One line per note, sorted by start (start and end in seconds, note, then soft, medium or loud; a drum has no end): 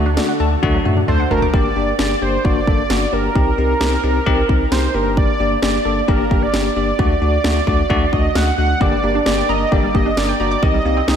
0.00 0.18 D2 loud
0.00 1.50 D3 medium
0.00 1.50 D4 medium
0.00 1.50 F#4 medium
0.00 1.50 A4 medium
0.06 0.16 D4 medium
0.17 0.32 A3 medium
0.17 0.32 D4 medium
0.17 0.32 F#4 medium
0.17 0.27 D5 medium
0.17 snare loud
0.29 0.38 F#5 medium
0.40 0.56 D2 loud
0.40 0.54 A3 medium
0.40 0.55 D4 medium
0.40 0.55 A4 loud
0.40 0.50 A5 loud
0.63 0.79 D2 loud
0.63 0.72 D3 medium
0.63 0.77 A3 loud
0.63 0.77 D4 loud
0.63 0.77 F#4 loud
0.63 kick medium
0.63 high tom medium
0.74 0.84 F#3 medium
0.85 1.01 F#2 loud
0.85 0.95 A3 medium
0.85 1.00 A3 medium
0.85 1.00 D4 medium
0.85 1.00 F#4 medium
0.85 mid tom medium
0.97 1.07 D4 medium
0.97 mid tom medium
1.08 1.24 D2 medium
1.08 1.23 A3 medium
1.08 1.23 D4 medium
1.08 1.23 A4 loud
1.08 1.29 C5 medium
1.08 1.18 D5 loud
1.08 mid tom medium
1.20 1.29 F#5 medium
1.31 1.47 F#1 loud
1.31 1.45 A3 medium
1.31 1.45 D4 medium
1.31 1.45 F#4 medium
1.31 1.52 A#4 medium
1.31 1.41 A5 medium
1.31 floor tom loud
1.42 1.52 D6 loud
1.42 floor tom medium
1.54 1.70 G1 loud
1.54 1.68 A#3 medium
1.54 1.68 D4 medium
1.54 1.68 G4 loud
1.54 1.96 D5 medium
1.54 kick loud
1.76 1.92 G1 medium
1.76 1.91 A#3 medium
1.76 1.91 D4 medium
1.76 1.91 G4 medium
1.99 2.15 G1 loud
1.99 2.14 A#3 medium
1.99 2.14 D4 medium
1.99 2.14 G4 medium
1.99 2.23 D5 medium
1.99 snare loud
2.22 2.38 G1 loud
2.22 2.36 A#3 medium
2.22 2.36 D4 medium
2.22 2.36 G4 medium
2.22 2.46 C5 medium
2.45 2.61 G1 loud
2.45 2.59 A#3 medium
2.45 2.59 D4 medium
2.45 2.59 F#4 loud
2.45 3.14 D5 loud
2.45 kick medium
2.67 2.83 G1 loud
2.67 2.82 A#3 medium
2.67 2.82 D4 medium
2.67 2.82 A4 medium
2.67 kick medium
2.90 3.06 G1 loud
2.90 3.04 A#3 medium
2.90 3.04 D4 medium
2.90 3.04 F#4 medium
2.90 snare loud
3.13 3.29 G1 medium
3.13 3.27 A#3 medium
3.13 3.27 D4 medium
3.13 3.27 G4 medium
3.13 4.73 A#4 loud
3.35 3.51 C2 loud
3.35 3.50 C4 medium
3.35 3.50 D#4 medium
3.35 3.50 G4 loud
3.35 kick loud
3.58 3.74 C2 loud
3.58 3.73 C4 medium
3.58 3.73 D#4 medium
3.58 3.73 G4 medium
3.81 3.97 C2 loud
3.81 3.95 C4 medium
3.81 3.95 D#4 medium
3.81 3.95 G4 loud
3.81 snare loud
4.04 4.20 C2 loud
4.04 4.18 C4 medium
4.04 4.18 D#4 medium
4.04 4.18 G4 medium
4.26 4.42 C2 loud
4.26 4.41 C4 loud
4.26 4.41 D#4 loud
4.26 4.41 G4 loud
4.26 kick medium
4.49 4.65 C2 loud
4.49 4.64 C4 medium
4.49 4.64 D#4 medium
4.49 4.64 A#4 medium
4.49 kick medium
4.72 4.88 C2 loud
4.72 4.86 C4 medium
4.72 4.86 D#4 medium
4.72 4.86 G4 medium
4.72 4.96 C5 medium
4.72 snare loud
4.94 5.26 G1 loud
4.94 5.31 A#3 medium
4.94 5.31 D4 medium
4.94 5.31 G4 medium
4.94 5.17 A#4 medium
5.17 5.60 D5 loud
5.17 kick loud
5.40 5.56 G1 loud
5.40 5.54 A#3 medium
5.40 5.54 D4 medium
5.40 5.54 G4 medium
5.62 5.79 G1 medium
5.62 5.77 A#3 medium
5.62 5.77 D4 medium
5.62 5.77 G4 medium
5.62 6.10 D5 loud
5.62 snare loud
5.85 6.01 G1 medium
5.85 6.00 A#3 medium
5.85 6.00 D4 medium
5.85 6.00 A4 medium
6.08 6.24 G1 loud
6.08 6.23 A#3 medium
6.08 6.23 D4 medium
6.08 6.23 G4 loud
6.08 6.44 A#4 medium
6.08 kick medium
6.31 6.47 G1 loud
6.31 6.45 A#3 medium
6.31 6.45 D4 medium
6.31 6.45 G4 medium
6.31 kick medium
6.42 6.76 D5 loud
6.54 6.70 G1 loud
6.54 6.68 A#3 medium
6.54 6.68 D4 medium
6.54 6.68 G4 medium
6.54 snare loud
6.76 6.92 G1 loud
6.76 6.91 A#3 medium
6.76 6.91 D4 medium
6.76 6.91 G4 medium
6.76 8.14 D5 loud
6.99 7.15 D2 loud
6.99 7.14 A3 medium
6.99 7.13 D4 medium
6.99 7.13 F#4 loud
6.99 kick loud
7.22 7.38 D2 loud
7.22 7.36 A3 medium
7.22 7.36 D4 medium
7.22 7.36 F#4 medium
7.44 7.60 D2 loud
7.44 7.59 A3 medium
7.44 7.59 D4 medium
7.44 7.59 F#4 medium
7.44 snare loud
7.67 7.83 D2 medium
7.67 7.82 A3 medium
7.67 7.82 D4 medium
7.67 7.82 F#4 medium
7.67 kick medium
7.90 8.06 D2 loud
7.90 8.04 A3 loud
7.90 8.04 D4 loud
7.90 8.04 F#4 loud
7.90 kick medium
8.13 8.29 D2 loud
8.13 8.27 A3 medium
8.13 8.27 D4 medium
8.13 8.27 F#4 medium
8.13 8.37 D#5 loud
8.13 kick medium
8.35 8.51 D2 loud
8.35 8.50 A3 medium
8.35 8.50 D4 medium
8.35 8.50 F#4 medium
8.35 8.57 F#5 loud
8.35 snare loud
8.58 8.74 D2 loud
8.58 8.73 A3 medium
8.58 8.73 D4 medium
8.58 8.73 F#4 medium
8.58 8.82 F#5 loud
8.81 8.97 G1 loud
8.81 8.91 D3 medium
8.81 8.95 A#3 medium
8.81 8.95 D4 medium
8.81 8.95 G4 loud
8.81 9.26 D5 loud
8.81 kick loud
8.92 9.02 G3 medium
9.04 9.20 G1 loud
9.04 9.13 A#3 medium
9.04 9.18 A#3 medium
9.04 9.18 D4 medium
9.04 9.18 G4 medium
9.15 9.25 D4 loud
9.26 9.42 G1 loud
9.26 9.41 A#3 medium
9.26 9.41 D4 medium
9.26 9.41 G4 medium
9.26 9.36 D5 medium
9.26 9.51 D5 loud
9.26 snare loud
9.38 9.47 G5 medium
9.49 9.65 G1 loud
9.49 9.64 A#3 medium
9.49 9.64 D4 medium
9.49 9.64 A#4 medium
9.49 9.73 D#5 loud
9.49 9.59 A#5 loud
9.72 9.88 G1 loud
9.72 9.82 D3 medium
9.72 9.86 A#3 medium
9.72 9.86 D4 medium
9.72 9.86 G4 loud
9.72 9.96 D5 loud
9.72 kick medium
9.83 9.93 G3 medium
9.95 10.11 G1 loud
9.95 10.04 A#3 medium
9.95 10.09 A#3 medium
9.95 10.09 D4 medium
9.95 10.09 G4 medium
9.95 10.19 D#5 loud
9.95 kick medium
10.06 10.16 D4 medium
10.17 10.33 G1 loud
10.17 10.32 A#3 medium
10.17 10.32 D4 medium
10.17 10.32 A#4 medium
10.17 10.39 D5 loud
10.17 10.27 D5 loud
10.17 snare loud
10.29 10.38 G5 medium
10.40 10.56 G1 loud
10.40 10.54 A#3 medium
10.40 10.54 D4 medium
10.40 10.54 F#4 medium
10.40 10.64 D5 medium
10.40 10.50 A#5 medium
10.51 10.61 D6 loud
10.63 10.79 C2 loud
10.63 10.73 D#3 medium
10.63 10.77 C4 medium
10.63 10.77 D#4 medium
10.63 10.77 G4 loud
10.63 11.16 D#5 loud
10.63 kick loud
10.74 10.84 G3 medium
10.85 11.01 C2 loud
10.85 10.95 A#3 medium
10.85 11.00 C4 medium
10.85 11.00 D#4 medium
10.85 11.00 G4 medium
10.97 11.07 C4 loud
11.08 11.16 C2 loud
11.08 11.16 C4 medium
11.08 11.16 D#4 medium
11.08 11.16 G4 medium
11.08 snare loud